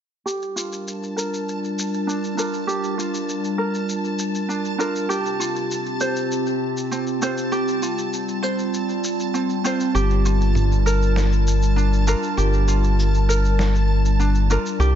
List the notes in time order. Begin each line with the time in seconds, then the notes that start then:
0.26 G3 D4 F4 G4 A#4 A5 A6, shaker
0.42 shaker
0.56 F4, shaker
0.72 shaker
0.87 shaker
1.03 shaker
1.16 A#4, shaker
1.34 shaker
1.48 shaker
1.64 shaker
1.79 shaker
1.94 shaker
2.07 D4, shaker
2.24 shaker
2.37 D4 F4 A#4, shaker
2.53 shaker
2.67 G4, shaker
2.83 shaker
2.98 F4, shaker
3.14 shaker
3.29 shaker
3.44 shaker
3.58 A#4
3.74 shaker
3.89 shaker
4.04 shaker
4.19 shaker
4.35 shaker
4.49 D4, shaker
4.65 shaker
4.78 D4 F4 A#4, shaker
4.95 shaker
5.09 C3 C4 G4, shaker
5.26 shaker
5.40 F4, shaker
5.56 shaker
5.71 shaker
5.86 shaker
6.01 C5, shaker
6.16 shaker
6.31 shaker
6.46 shaker
6.77 shaker
6.91 C4, shaker
7.07 shaker
7.22 C4 F4 C5, shaker
7.37 shaker
7.52 G3 G4, shaker
7.68 shaker
7.82 F4, shaker
7.98 shaker
8.13 shaker
8.28 shaker
8.43 C5, shaker
8.59 shaker
8.74 shaker
8.89 shaker
9.04 shaker
9.20 shaker
9.34 C4, shaker
9.49 shaker
9.64 C4 F4 C5, shaker
9.80 shaker
9.94 G1 G3 D4 G4 A#4, shaker
10.10 shaker
10.25 F4, shaker
10.41 shaker
10.55 mid tom, shaker
10.72 shaker
10.86 A#4, shaker
11.02 shaker
11.16 snare, shaker
11.32 shaker
11.47 shaker
11.62 shaker
11.76 D4, shaker
11.93 shaker
12.07 D4 F4 A#4, shaker
12.23 shaker
12.37 G1 G4, shaker
12.53 shaker
12.68 F4, shaker
12.84 shaker
12.99 shaker
13.14 shaker
13.29 A#4, shaker
13.45 shaker
13.59 snare, shaker
13.75 shaker
14.05 shaker
14.20 D4, shaker
14.35 shaker
14.50 D4 F4 A#4, shaker
14.66 shaker
14.79 C2 C3 C4 F4 G4, shaker